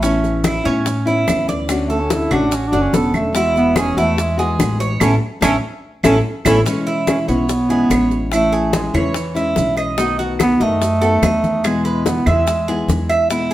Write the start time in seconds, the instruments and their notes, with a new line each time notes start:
Already playing: upright bass A1, bass clarinet A3
0.02 nylon-string guitar E3 B3 C#4 E4, cuban tres C#4, high bongo, high conga, maracas
0.24 high bongo, high conga, maracas
0.44 cuban tres E4, high bongo, high conga, claves, maracas
0.64 upright bass A2, nylon-string guitar B3 C#4 E4, cuban tres C#4, high conga, maracas
0.86 muted nylon-string guitar stroke, high bongo, high conga, maracas
1.06 nylon-string guitar B3 C#4 E4, cuban tres E4, high bongo, high conga, maracas
1.26 upright bass D2, nylon-string guitar E3 B3 C#4 E4, high bongo, low bongo, high conga, claves, maracas
1.48 cuban tres D5, high bongo, high conga, maracas
1.68 nylon-string guitar D3 A3 C#4 F#4, high bongo, high conga, claves, maracas
1.86 bass clarinet A3, cuban tres A4, high bongo, maracas
1.90 high conga
2.00 bass clarinet C#4
2.10 bass clarinet E4, high bongo, high conga, maracas
2.31 upright bass A1, nylon-string guitar A3 C#4 F#4, bass clarinet D4, cuban tres F#4, low conga, claves, maracas
2.52 bass clarinet C#4, muted nylon-string guitar stroke, high bongo, high conga, maracas
2.67 bass clarinet D4
2.72 upright bass F#1, nylon-string guitar A3 C#4 F#4, cuban tres D4, high bongo, high conga, maracas
2.81 bass clarinet C#4
2.92 upright bass E1, nylon-string guitar D3 A3 C#4 F#4, bass clarinet B3, cuban tres A4, high bongo, low bongo, high conga, maracas
3.14 bass clarinet A3, high bongo, high conga, claves, maracas
3.33 nylon-string guitar B2 E3 G#3 B3 F#4, bass clarinet G#3, cuban tres E4, high bongo, high conga, maracas
3.56 bass clarinet B3, high bongo, high conga, maracas
3.76 cuban tres G#4, high bongo, high conga, claves, maracas
3.80 bass clarinet C#4
3.97 upright bass E2, nylon-string guitar E3 G#3 B3 F#4, bass clarinet A3, cuban tres E4, high conga, maracas
4.17 bass clarinet G#3, muted nylon-string guitar stroke, high bongo, high conga, maracas
4.37 nylon-string guitar E3 G#3 B3 F#4, cuban tres G#4, high bongo, high conga, maracas
4.58 upright bass A1, nylon-string guitar E3 G#3 B3 F#4, high bongo, low bongo, high conga, claves, maracas
4.80 cuban tres C#5, high bongo, maracas
5.00 upright bass A1, nylon-string guitar A3 B3 C#4, cuban tres C#4 E4 A4, bass clarinet C#4, high bongo, high conga, claves, maracas
5.41 upright bass A1, nylon-string guitar A3 B3 C#4, cuban tres C#4 E4 A4, bass clarinet C#4, high bongo, high conga, claves, maracas
6.03 upright bass A1, nylon-string guitar A3 B3 C#4, bass clarinet C#4, cuban tres C#4 E4 A4, high bongo, high conga, claves, maracas
6.45 upright bass A1, nylon-string guitar A3 B3 C#4, bass clarinet C#4, cuban tres C#4 E4 A4, high bongo, high conga, claves, maracas
6.65 nylon-string guitar B2 E3 G#3 C#4 E4, cuban tres C#4, high bongo, high conga, maracas
6.87 cuban tres E4, high bongo, high conga, maracas
7.07 bass clarinet C#4, high bongo, high conga, claves, maracas
7.28 upright bass B1, nylon-string guitar E3 G#3 C#4 E4, bass clarinet B3, cuban tres C#5, high conga, maracas
7.48 muted nylon-string guitar stroke, high bongo, high conga, maracas
7.69 nylon-string guitar E3 G#3 C#4 E4, cuban tres G#4, high bongo, high conga, maracas
7.89 upright bass A1, nylon-string guitar E3 G#3 C#4 E4, cuban tres C#5, high bongo, low bongo, high conga, claves, maracas
8.11 high bongo, maracas
8.32 nylon-string guitar E3 C#4 E4, bass clarinet A3, cuban tres E4, high bongo, high conga, claves, maracas
8.52 cuban tres G#4, high bongo, high conga, maracas
8.73 bass clarinet G#3, high bongo, high conga, maracas
8.94 upright bass E2, bass clarinet E3, nylon-string guitar G#3 C#4 E4, cuban tres C#5, low conga, claves, maracas
9.14 muted nylon-string guitar stroke, high bongo, high conga, maracas
9.35 nylon-string guitar G#3 C#4 E4, cuban tres E4, high bongo, high conga, maracas
9.56 upright bass B1, nylon-string guitar E3 G#3 C#4 E4, high bongo, low bongo, high conga, maracas
9.77 cuban tres D#5, high bongo, claves, maracas
9.97 nylon-string guitar B2 D#3 A3 B3 F#4, cuban tres D#4, high bongo, high conga, maracas
10.19 cuban tres F#4, high bongo, high conga, maracas
10.39 bass clarinet B3, high bongo, high conga, claves, maracas
10.60 upright bass F#2, nylon-string guitar D#3 A3 B3 F#4, bass clarinet A3, cuban tres D#5, high conga, maracas
10.81 muted nylon-string guitar stroke, high bongo, high conga, maracas
11.01 nylon-string guitar D#3 A3 B3 F#4, cuban tres A4, high bongo, high conga, maracas
11.22 upright bass E2, nylon-string guitar D#3 A3 B3 F#4, cuban tres D#5, high bongo, low bongo, high conga, claves, maracas
11.44 high bongo, high conga, maracas
11.64 nylon-string guitar B2 E3 G#3 B3 E4, bass clarinet G#3, cuban tres G#4, high bongo, high conga, claves, maracas
11.85 cuban tres B4, high bongo, high conga, maracas
12.06 bass clarinet B3, high bongo, high conga, maracas
12.26 upright bass E2, nylon-string guitar E3 G#3 B3 E4, bass clarinet G#3, cuban tres E5, low conga, claves, maracas
12.47 muted nylon-string guitar stroke, high bongo, high conga, maracas
12.68 nylon-string guitar E3 G#3 B3 E4, cuban tres G#4, high bongo, high conga, maracas
12.88 upright bass E2, nylon-string guitar E3 G#3 B3 E4, high bongo, low bongo, high conga, maracas
13.09 cuban tres E5, high bongo, claves, maracas
13.30 nylon-string guitar B2 E3 G#3 B3 E4, cuban tres E4, high bongo, high conga, maracas
13.51 cuban tres G#4